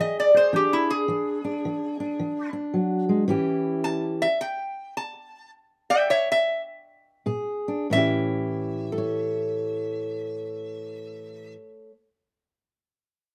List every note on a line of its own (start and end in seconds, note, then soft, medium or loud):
0.00 0.49 E3 medium
0.00 0.33 G#4 medium
0.00 0.17 D#5 medium
0.20 0.36 D5 medium
0.34 1.06 G#4 medium
0.34 0.54 C5 medium
0.53 1.04 E3 medium
0.53 1.06 D4 medium
0.53 0.73 G4 medium
0.73 0.90 E4 medium
0.90 2.51 G#4 medium
1.08 1.59 E3 medium
1.08 1.43 D4 medium
1.44 1.99 D4 medium
1.65 2.15 E3 medium
2.00 2.52 D4 medium
2.19 2.70 E3 medium
2.53 3.25 D4 medium
2.74 3.08 F#3 medium
3.09 3.27 G#3 medium
3.28 3.75 A2 medium
3.28 4.26 E3 medium
3.28 4.26 C#4 medium
3.28 4.26 E4 medium
3.28 4.26 G4 medium
3.84 4.19 A5 medium
4.22 4.38 E5 loud
4.41 4.94 G5 medium
4.97 5.50 A5 medium
5.90 6.09 E5 medium
5.90 6.08 G5 loud
6.10 6.27 C#5 medium
6.10 6.28 E5 medium
6.32 6.61 E5 loud
7.26 7.84 A#2 medium
7.26 7.86 G#4 medium
7.68 7.87 D4 medium
7.90 11.54 A2 medium
7.90 11.55 E3 medium
7.90 11.53 E5 loud
7.94 8.92 C#4 medium
7.94 8.98 E4 medium
7.94 11.62 G4 medium
8.92 11.90 A4 medium
8.98 11.93 C#5 medium